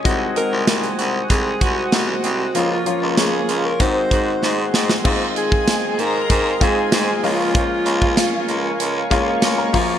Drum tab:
CC |----------------|----------------|x---------------|----------------|
HH |x-x-xxx-x-x-x-x-|x-x-x-x-x-x-----|--x-x-x-x-x-x-o-|x-x-x-x-x-x-x-o-|
TB |----------------|----------------|----x-------x---|----x-------x---|
SD |----o-------o---|----o-------o-oo|----o-------o---|----o-------o---|
BD |o-------o-o-----|--------o-o-----|o--o----o-o-----|o--o------o---o-|